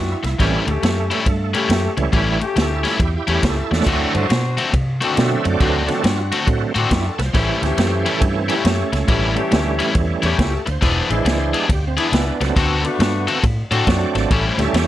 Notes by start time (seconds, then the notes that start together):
Already playing: F#2 C4 D4 E4 F#4
0.23 C2, muted overdriven electric guitar stroke, snare, ride
0.39 A1 A2 E3 G3 A3 C4 C#4 E4 G4, kick, snare, ride
0.57 A3
0.67 D2 A3 C#4 G4, muted overdriven electric guitar stroke, ride
0.71 A3
0.83 F#2, muted overdriven electric guitar stroke, snare, ride
1.11 A2 G3 C#4 E4, ride
1.26 G2, muted overdriven electric guitar stroke, kick, ride
1.54 A2 G3 A3 C#4 E4 G4, ride
1.69 F#2, muted overdriven electric guitar stroke, snare, ride
1.97 C#2 E3 G3 A3 C#4, muted overdriven electric guitar stroke, ride
2.12 A1 A2 E3 G3 A3 C#4 E4 G4, kick, ride
2.40 A3 C#4 G4, muted overdriven electric guitar stroke, ride
2.54 D2 G#4, muted overdriven electric guitar stroke, ride
2.58 E4 A4, snare
2.72 E4 A4
2.84 A2 G3 C#4 E4 A4, snare, ride
3.00 E2 E4 G4, muted overdriven electric guitar stroke, kick, ride
3.16 E4 G4
3.27 E2 A2 G3 A3 C#4 E4 G4, ride
3.31 E4 G4
3.43 C#2 E4 A4, muted overdriven electric guitar stroke, kick, snare, ride
3.71 E2 D3 F#3 A3 D4, muted overdriven electric guitar stroke, snare
3.83 D2 D3 C4 D4, kick, snare, crash, ride
3.87 A3 C4 F#4
4.14 G2 D4 F#4 C5, muted overdriven electric guitar stroke, ride
4.30 B2, muted overdriven electric guitar stroke, snare, ride
4.57 D3 A3 C4 F#4, ride
4.73 C3, muted overdriven electric guitar stroke, kick, ride
5.01 D3 A3 C4 D4 F#4, ride
5.16 B2 D3 F#3 A3 C4, muted overdriven electric guitar stroke, snare, ride
5.20 E5
5.45 F#2, muted overdriven electric guitar stroke, ride
5.49 D5
5.60 D2 D3 A3 C4 D4 F#4 B4, kick, ride
5.78 D5
5.88 D3 F#3 A3 C4 D4 F#4, muted overdriven electric guitar stroke, snare, ride
5.93 A4
6.04 G2, muted overdriven electric guitar stroke, snare, ride
6.08 F#4
6.18 F4
6.22 F#4
6.32 D3 A3 C4 F#4, ride
6.46 A2 D3 F#3 A3 C4, muted overdriven electric guitar stroke, kick, ride
6.75 A2 D3 A3 C4 D4 F#4, ride
6.91 F#2 E4, muted overdriven electric guitar stroke, kick, snare, ride
7.09 A4
7.19 C2 B4, muted overdriven electric guitar stroke, snare, ride
7.24 C5
7.34 A1 A2 E3 G3 A3 C#4 E4 G4, kick, snare, ride
7.62 D2 A3 C#4 G4, muted overdriven electric guitar stroke, snare, ride
7.78 F#2, muted overdriven electric guitar stroke, snare, ride
8.06 A2 G3 C#4 E4 A4, ride
8.21 G2 G4, muted overdriven electric guitar stroke, kick, ride
8.39 C4
8.49 A2 G3 A3 C#4 E4 G4, ride
8.53 E4
8.64 F#2 A3 C#4, muted overdriven electric guitar stroke, snare, ride
8.92 C#2, muted overdriven electric guitar stroke, snare, ride
9.08 A1 A2 E3 G3 A3 C#4 E4 G4, kick, ride
9.36 A3 C#4 G4, muted overdriven electric guitar stroke, ride
9.51 D2, muted overdriven electric guitar stroke, snare, ride
9.79 A2 G3 C#4 E4, ride
9.94 E2, muted overdriven electric guitar stroke, kick, ride
10.22 E2 A2 G3 A3 C#4 E4 G4, ride
10.38 C#2 E4, muted overdriven electric guitar stroke, kick, snare, ride
10.57 A4
10.66 D2 B4, muted overdriven electric guitar stroke, ride
10.71 C5
10.81 E1 E3 G#3 B3 D4 E4 G#4, kick, snare, ride
11.09 A1 E3 G#3 D4 E4, muted overdriven electric guitar stroke, ride
11.25 C#2, muted overdriven electric guitar stroke, snare, ride
11.54 E3 B3 D4 G#4, ride
11.58 G4
11.69 D2 G4, muted overdriven electric guitar stroke, kick, ride
11.87 C4
11.97 E3 G#3 B3 D4 E4 G#4, ride
12.01 E4
12.12 C#2 B3 D4, muted overdriven electric guitar stroke, snare, ride
12.41 C#2 F#3 A3 C4 D4, muted overdriven electric guitar stroke, snare, ride
12.56 D2 D3 C4 D4 F#4 A4, kick, snare, ride
12.84 A3 D4 F#4, muted overdriven electric guitar stroke, ride
12.99 G2, muted overdriven electric guitar stroke, snare, ride
13.28 D3 C4 F#4 A4, ride
13.43 A2, muted overdriven electric guitar stroke, kick, ride
13.71 A2 D3 C4 D4 F#4 A4 C#5, ride
13.75 D5
13.87 F#2 F#3 A3 C4 D4, muted overdriven electric guitar stroke, kick, snare, ride
14.15 G#1 D5, muted overdriven electric guitar stroke, snare, ride
14.30 A1 A2 G3 A3 C#4 E4 G4 A4, kick, ride
14.47 C5
14.58 D2 G3 A3 C#4 E4 G4, muted overdriven electric guitar stroke, snare, ride
14.62 A4
14.73 E2 G4, muted overdriven electric guitar stroke, snare, ride